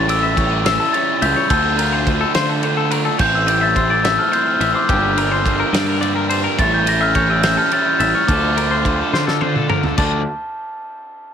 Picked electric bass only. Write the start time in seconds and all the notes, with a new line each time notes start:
Already playing: A1
1.22 C#2
1.50 D2
2.35 D3
3.19 A1
4.60 A1
4.89 G1
5.73 G2
6.59 A1
8.00 A1
8.28 D2
9.13 D3
9.98 D2